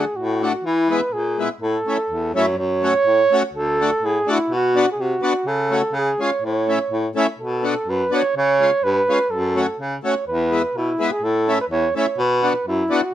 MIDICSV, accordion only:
0, 0, Header, 1, 2, 480
1, 0, Start_track
1, 0, Key_signature, 3, "minor"
1, 0, Tempo, 480384
1, 650, Time_signature, 2, 2, 24, 8
1, 13130, End_track
2, 0, Start_track
2, 0, Title_t, "Accordion"
2, 0, Program_c, 0, 21
2, 414, Note_on_c, 0, 57, 55
2, 422, Note_on_c, 0, 62, 54
2, 432, Note_on_c, 0, 66, 64
2, 521, Note_off_c, 0, 57, 0
2, 525, Note_off_c, 0, 62, 0
2, 530, Note_off_c, 0, 66, 0
2, 891, Note_on_c, 0, 56, 51
2, 905, Note_on_c, 0, 59, 43
2, 912, Note_on_c, 0, 64, 67
2, 999, Note_off_c, 0, 56, 0
2, 1006, Note_off_c, 0, 59, 0
2, 1010, Note_off_c, 0, 64, 0
2, 1379, Note_on_c, 0, 56, 56
2, 1389, Note_on_c, 0, 59, 54
2, 1397, Note_on_c, 0, 64, 64
2, 1484, Note_off_c, 0, 56, 0
2, 1489, Note_off_c, 0, 59, 0
2, 1493, Note_off_c, 0, 64, 0
2, 1865, Note_on_c, 0, 57, 51
2, 1871, Note_on_c, 0, 61, 37
2, 1880, Note_on_c, 0, 64, 58
2, 1968, Note_off_c, 0, 57, 0
2, 1971, Note_off_c, 0, 61, 0
2, 1976, Note_off_c, 0, 64, 0
2, 2350, Note_on_c, 0, 57, 59
2, 2354, Note_on_c, 0, 61, 59
2, 2366, Note_on_c, 0, 64, 75
2, 2452, Note_off_c, 0, 57, 0
2, 2454, Note_off_c, 0, 61, 0
2, 2460, Note_off_c, 0, 64, 0
2, 2819, Note_on_c, 0, 57, 51
2, 2832, Note_on_c, 0, 61, 41
2, 2836, Note_on_c, 0, 66, 61
2, 2928, Note_off_c, 0, 57, 0
2, 2935, Note_off_c, 0, 61, 0
2, 2937, Note_off_c, 0, 66, 0
2, 3312, Note_on_c, 0, 57, 77
2, 3322, Note_on_c, 0, 61, 64
2, 3335, Note_on_c, 0, 66, 80
2, 3415, Note_off_c, 0, 57, 0
2, 3421, Note_off_c, 0, 61, 0
2, 3427, Note_off_c, 0, 66, 0
2, 3797, Note_on_c, 0, 57, 57
2, 3802, Note_on_c, 0, 62, 45
2, 3810, Note_on_c, 0, 66, 63
2, 3898, Note_off_c, 0, 57, 0
2, 3901, Note_off_c, 0, 62, 0
2, 3905, Note_off_c, 0, 66, 0
2, 4265, Note_on_c, 0, 57, 69
2, 4269, Note_on_c, 0, 62, 62
2, 4284, Note_on_c, 0, 66, 74
2, 4372, Note_off_c, 0, 57, 0
2, 4374, Note_off_c, 0, 62, 0
2, 4381, Note_off_c, 0, 66, 0
2, 4750, Note_on_c, 0, 59, 53
2, 4755, Note_on_c, 0, 62, 53
2, 4763, Note_on_c, 0, 66, 72
2, 4853, Note_off_c, 0, 59, 0
2, 4856, Note_off_c, 0, 62, 0
2, 4860, Note_off_c, 0, 66, 0
2, 5214, Note_on_c, 0, 59, 69
2, 5224, Note_on_c, 0, 62, 56
2, 5229, Note_on_c, 0, 66, 70
2, 5325, Note_off_c, 0, 59, 0
2, 5330, Note_off_c, 0, 62, 0
2, 5332, Note_off_c, 0, 66, 0
2, 5701, Note_on_c, 0, 57, 53
2, 5708, Note_on_c, 0, 61, 51
2, 5718, Note_on_c, 0, 66, 60
2, 5809, Note_off_c, 0, 57, 0
2, 5812, Note_off_c, 0, 61, 0
2, 5818, Note_off_c, 0, 66, 0
2, 6190, Note_on_c, 0, 56, 62
2, 6196, Note_on_c, 0, 61, 57
2, 6202, Note_on_c, 0, 65, 66
2, 6295, Note_off_c, 0, 56, 0
2, 6298, Note_off_c, 0, 61, 0
2, 6301, Note_off_c, 0, 65, 0
2, 6673, Note_on_c, 0, 57, 52
2, 6682, Note_on_c, 0, 61, 42
2, 6687, Note_on_c, 0, 64, 63
2, 6778, Note_off_c, 0, 57, 0
2, 6782, Note_off_c, 0, 61, 0
2, 6785, Note_off_c, 0, 64, 0
2, 7146, Note_on_c, 0, 57, 83
2, 7156, Note_on_c, 0, 61, 63
2, 7163, Note_on_c, 0, 64, 77
2, 7254, Note_off_c, 0, 57, 0
2, 7259, Note_off_c, 0, 61, 0
2, 7263, Note_off_c, 0, 64, 0
2, 7623, Note_on_c, 0, 59, 44
2, 7631, Note_on_c, 0, 62, 46
2, 7640, Note_on_c, 0, 66, 66
2, 7732, Note_off_c, 0, 59, 0
2, 7736, Note_off_c, 0, 62, 0
2, 7740, Note_off_c, 0, 66, 0
2, 8099, Note_on_c, 0, 59, 60
2, 8109, Note_on_c, 0, 62, 54
2, 8120, Note_on_c, 0, 66, 74
2, 8209, Note_off_c, 0, 59, 0
2, 8214, Note_off_c, 0, 62, 0
2, 8219, Note_off_c, 0, 66, 0
2, 8590, Note_on_c, 0, 56, 58
2, 8599, Note_on_c, 0, 61, 50
2, 8607, Note_on_c, 0, 65, 56
2, 8694, Note_off_c, 0, 56, 0
2, 8698, Note_off_c, 0, 61, 0
2, 8702, Note_off_c, 0, 65, 0
2, 9077, Note_on_c, 0, 56, 62
2, 9083, Note_on_c, 0, 61, 51
2, 9091, Note_on_c, 0, 65, 69
2, 9176, Note_off_c, 0, 56, 0
2, 9180, Note_off_c, 0, 61, 0
2, 9184, Note_off_c, 0, 65, 0
2, 9544, Note_on_c, 0, 57, 57
2, 9556, Note_on_c, 0, 61, 47
2, 9560, Note_on_c, 0, 66, 63
2, 9650, Note_off_c, 0, 57, 0
2, 9656, Note_off_c, 0, 61, 0
2, 9658, Note_off_c, 0, 66, 0
2, 10026, Note_on_c, 0, 57, 51
2, 10034, Note_on_c, 0, 61, 57
2, 10041, Note_on_c, 0, 66, 63
2, 10132, Note_off_c, 0, 57, 0
2, 10136, Note_off_c, 0, 61, 0
2, 10139, Note_off_c, 0, 66, 0
2, 10500, Note_on_c, 0, 56, 52
2, 10511, Note_on_c, 0, 59, 50
2, 10515, Note_on_c, 0, 64, 61
2, 10609, Note_off_c, 0, 56, 0
2, 10615, Note_off_c, 0, 59, 0
2, 10617, Note_off_c, 0, 64, 0
2, 10980, Note_on_c, 0, 56, 54
2, 10993, Note_on_c, 0, 59, 62
2, 10997, Note_on_c, 0, 64, 74
2, 11089, Note_off_c, 0, 56, 0
2, 11096, Note_off_c, 0, 59, 0
2, 11097, Note_off_c, 0, 64, 0
2, 11466, Note_on_c, 0, 57, 63
2, 11472, Note_on_c, 0, 61, 51
2, 11479, Note_on_c, 0, 64, 50
2, 11570, Note_off_c, 0, 57, 0
2, 11573, Note_off_c, 0, 61, 0
2, 11577, Note_off_c, 0, 64, 0
2, 11940, Note_on_c, 0, 57, 65
2, 11950, Note_on_c, 0, 61, 59
2, 11956, Note_on_c, 0, 64, 68
2, 12046, Note_off_c, 0, 57, 0
2, 12051, Note_off_c, 0, 61, 0
2, 12054, Note_off_c, 0, 64, 0
2, 12410, Note_on_c, 0, 59, 51
2, 12422, Note_on_c, 0, 62, 46
2, 12422, Note_on_c, 0, 66, 61
2, 12519, Note_off_c, 0, 59, 0
2, 12525, Note_off_c, 0, 62, 0
2, 12525, Note_off_c, 0, 66, 0
2, 12886, Note_on_c, 0, 59, 70
2, 12893, Note_on_c, 0, 62, 58
2, 12905, Note_on_c, 0, 66, 77
2, 12995, Note_off_c, 0, 59, 0
2, 12998, Note_off_c, 0, 62, 0
2, 13004, Note_off_c, 0, 66, 0
2, 13130, End_track
0, 0, End_of_file